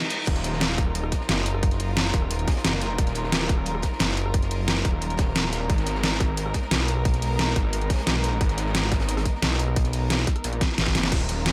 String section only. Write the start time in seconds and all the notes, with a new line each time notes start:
Already playing: G#3 B3 D#4 A#4
0.27 F#3 F4 A#4
5.70 G#3 B3 D#4
11.12 F#3 D#4 F4 A#4